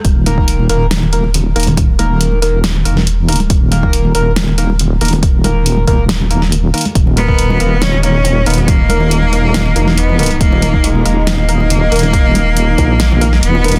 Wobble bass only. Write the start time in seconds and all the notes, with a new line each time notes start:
0.05 D#1
0.69 D#1
1.56 D#1
2.85 E1
3.50 D#1
4.15 D#1
5.01 D#1
5.87 D#1
6.95 D#1
7.60 D#1
8.46 D#1
9.76 E1
10.41 D#1
11.05 D#1
11.92 D#1
12.78 A#1
13.43 D#1